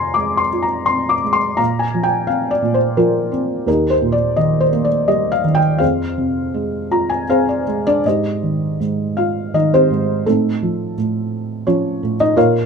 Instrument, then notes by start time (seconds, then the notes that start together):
felt piano
Already playing: F2 C3 C5 F5 G#5 A#5 C6
0.14 G#3 D6
0.37 C6
0.53 F4
0.63 A#5
0.86 C4 C6
1.09 D6
1.24 G#3
1.33 C6
1.57 A#2 F5 A#5
1.79 G#5
1.94 F3
2.03 G5
2.27 C4 F5
2.51 D5
2.62 A#2
2.74 C5
2.97 F3 F4 A#4
3.32 C4
3.67 D#2 D#4 G4 A#4
3.90 C5
4.02 A#2
4.12 D5
4.36 D#3 D#5
4.60 C5
4.73 A#3
4.85 D5
5.08 G3 D#5
5.32 F5
5.44 D#3
5.55 G5
5.78 F2 G#4 C5 F5
6.18 C3
6.54 G#3
6.91 F4 A#5
7.10 G#5
7.30 C4 G#4 C5 F5
7.49 D5
7.67 G#3
7.87 D4 D5
8.05 G#2 D#4 G4 C5 D#5
8.43 D#3
8.80 G#2
9.17 F4 F5
9.54 D#3 D#4 D#5
9.74 C4 G4 C5
9.90 G#2
10.26 A2 A3 C4 D#4 A4
10.62 F3
10.98 A2
11.67 F3 C#4 F4 C#5
12.03 A2
12.20 D#4 D#5
12.36 A#2 F4 A#4 C#5 F5